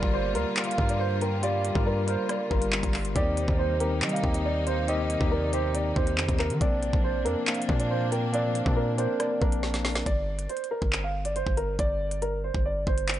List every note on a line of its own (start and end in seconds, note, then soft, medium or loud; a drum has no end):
0.00 0.37 G1 loud
0.00 3.12 D3 medium
0.00 0.34 G3 loud
0.00 6.57 G3 medium
0.00 3.12 A#3 medium
0.00 0.35 F4 medium
0.00 3.12 F4 medium
0.00 0.36 A#4 loud
0.00 0.11 D5 medium
0.00 0.53 D5 medium
0.00 kick loud
0.13 0.30 C5 medium
0.34 0.45 D2 loud
0.34 0.72 G3 medium
0.34 0.72 F4 medium
0.34 0.65 A#4 medium
0.34 0.72 A#4 medium
0.34 closed hi-hat medium
0.57 1.18 F5 loud
0.57 clap loud
0.57 closed hi-hat medium
0.64 0.84 F5 medium
0.64 closed hi-hat medium
0.71 closed hi-hat medium
0.77 1.72 G2 loud
0.77 1.33 G3 medium
0.77 1.34 F4 medium
0.77 1.34 A#4 medium
0.77 kick loud
0.89 0.98 D5 medium
0.89 closed hi-hat medium
0.99 1.16 C5 medium
1.21 1.38 A#4 medium
1.21 1.42 G5 medium
1.21 closed hi-hat medium
1.42 1.70 G3 loud
1.42 1.71 F4 loud
1.42 1.71 G4 loud
1.42 1.84 D5 loud
1.42 1.84 F5 loud
1.42 closed hi-hat medium
1.65 closed hi-hat medium
1.75 2.17 G2 loud
1.75 2.03 G3 medium
1.75 2.03 F4 medium
1.75 2.04 A#4 medium
1.75 kick loud
1.86 2.03 A#4 medium
1.86 2.07 D5 loud
2.07 2.44 G3 medium
2.07 2.45 F4 medium
2.07 2.69 A#4 medium
2.07 2.45 A#4 medium
2.07 2.24 C5 medium
2.07 closed hi-hat medium
2.29 2.46 D5 medium
2.29 cross-stick medium
2.29 closed hi-hat medium
2.50 2.82 G1 loud
2.50 3.06 G3 medium
2.50 3.06 F4 medium
2.50 3.12 A#4 medium
2.50 3.07 A#4 medium
2.50 kick loud
2.62 closed hi-hat medium
2.72 clap loud
2.83 3.14 G1 loud
2.83 kick medium
2.83 closed hi-hat medium
2.94 clap medium
2.94 open hi-hat medium
3.05 closed hi-hat medium
3.15 3.47 D#2 loud
3.15 10.02 C3 medium
3.15 3.71 D#3 loud
3.15 6.58 A#3 medium
3.15 3.71 C4 medium
3.15 6.58 D#4 medium
3.15 3.71 G4 loud
3.15 3.56 D5 loud
3.15 kick loud
3.15 closed hi-hat medium
3.37 3.98 C5 medium
3.37 closed hi-hat medium
3.48 4.03 D#2 loud
3.48 kick loud
3.59 3.75 C5 medium
3.80 4.17 D#3 medium
3.80 4.17 C4 medium
3.80 4.18 G4 medium
3.80 4.11 A#4 medium
3.80 closed hi-hat medium
4.02 4.22 G3 loud
4.02 4.63 D#5 medium
4.02 clap loud
4.02 closed hi-hat medium
4.09 4.29 F5 medium
4.09 closed hi-hat medium
4.16 closed hi-hat medium
4.23 5.17 D#2 loud
4.23 4.79 D#3 medium
4.23 4.79 C4 medium
4.23 4.79 G4 medium
4.23 kick loud
4.34 4.42 D#5 medium
4.34 closed hi-hat medium
4.45 4.62 D5 medium
4.67 4.83 C5 medium
4.67 4.88 F5 medium
4.67 closed hi-hat medium
4.87 5.16 D#3 loud
4.87 5.16 C4 loud
4.87 5.16 G4 loud
4.87 5.29 D#5 loud
4.87 closed hi-hat medium
5.10 closed hi-hat medium
5.20 5.93 D#2 loud
5.20 5.48 D#3 medium
5.20 5.48 C4 medium
5.20 5.49 G4 medium
5.20 kick loud
5.31 5.48 A#4 medium
5.31 5.52 D5 medium
5.52 5.90 D#3 medium
5.52 5.90 C4 medium
5.52 5.90 G4 loud
5.52 5.73 C5 medium
5.52 5.70 C5 medium
5.52 closed hi-hat medium
5.75 5.91 D5 medium
5.75 closed hi-hat loud
5.95 6.19 D#2 loud
5.95 6.51 D#3 medium
5.95 6.52 C4 medium
5.95 6.52 G4 medium
5.95 6.37 C5 medium
5.95 kick loud
6.07 closed hi-hat medium
6.18 6.28 F2 loud
6.18 clap loud
6.29 6.52 D#2 loud
6.29 kick loud
6.29 closed hi-hat medium
6.39 6.56 A#4 medium
6.39 clap medium
6.50 6.60 D#3 loud
6.50 closed hi-hat medium
6.60 6.92 A#1 loud
6.60 10.03 F3 medium
6.60 7.16 A#3 medium
6.60 10.03 A#3 medium
6.60 7.16 C4 medium
6.60 10.03 D4 loud
6.60 7.17 D4 loud
6.60 7.02 D5 loud
6.60 kick loud
6.60 closed hi-hat medium
6.82 7.43 D5 medium
6.82 closed hi-hat medium
6.93 7.27 A#1 loud
6.93 kick loud
7.04 7.20 C5 medium
7.25 7.36 F2 loud
7.25 7.62 A#3 medium
7.25 7.63 C4 medium
7.25 7.63 D4 medium
7.25 7.56 A#4 medium
7.25 closed hi-hat medium
7.47 8.08 F5 loud
7.47 clap loud
7.47 closed hi-hat medium
7.54 7.75 F5 medium
7.54 closed hi-hat medium
7.62 closed hi-hat medium
7.68 8.62 A#2 loud
7.68 8.24 A#3 medium
7.68 8.24 C4 medium
7.68 8.25 D4 medium
7.68 kick loud
7.80 7.88 D5 medium
7.80 closed hi-hat medium
7.90 8.07 C5 medium
8.12 8.28 A#4 medium
8.12 8.32 G5 loud
8.12 closed hi-hat medium
8.33 8.61 A#3 loud
8.33 8.61 C4 medium
8.33 8.62 D4 loud
8.33 8.74 D5 loud
8.33 8.74 F5 loud
8.33 closed hi-hat medium
8.55 closed hi-hat medium
8.65 9.07 A#2 loud
8.65 8.93 A#3 medium
8.65 8.94 C4 medium
8.65 8.94 D4 medium
8.65 kick loud
8.77 8.93 A#4 medium
8.77 8.98 D5 medium
8.98 9.35 A#3 medium
8.98 9.35 C4 medium
8.98 9.36 D4 medium
8.98 9.59 A#4 medium
8.98 9.15 C5 medium
8.98 closed hi-hat medium
9.20 9.36 D5 medium
9.20 cross-stick medium
9.20 closed hi-hat medium
9.41 10.04 A#1 loud
9.41 9.97 A#3 medium
9.41 9.97 C4 medium
9.41 9.97 D4 medium
9.41 10.02 A#4 medium
9.41 kick loud
9.52 closed hi-hat medium
9.63 snare medium
9.74 snare medium
9.74 closed hi-hat medium
9.85 snare loud
9.85 open hi-hat medium
9.95 snare loud
9.95 closed hi-hat medium
10.06 10.48 G1 loud
10.06 10.47 D5 loud
10.06 kick loud
10.06 closed hi-hat medium
10.39 closed hi-hat medium
10.49 10.66 C5 medium
10.49 closed hi-hat medium
10.57 closed hi-hat medium
10.64 closed hi-hat medium
10.71 11.01 A#4 medium
10.82 11.44 G1 loud
10.82 kick medium
10.93 clap loud
11.04 11.20 F5 medium
11.25 11.33 D5 medium
11.25 closed hi-hat medium
11.36 11.52 C5 medium
11.36 closed hi-hat medium
11.47 11.78 G1 loud
11.47 kick loud
11.57 11.74 A#4 medium
11.57 closed hi-hat medium
11.79 12.51 G1 loud
11.79 12.20 D5 loud
11.79 kick loud
11.79 closed hi-hat medium
12.11 closed hi-hat medium
12.22 12.39 A#4 medium
12.22 closed hi-hat medium
12.44 12.60 C5 medium
12.54 12.86 G1 loud
12.54 kick medium
12.65 12.82 D5 medium
12.87 13.20 G1 loud
12.87 13.20 C5 medium
12.87 kick loud
12.98 closed hi-hat medium
13.08 clap loud
13.08 closed hi-hat medium
13.14 closed hi-hat medium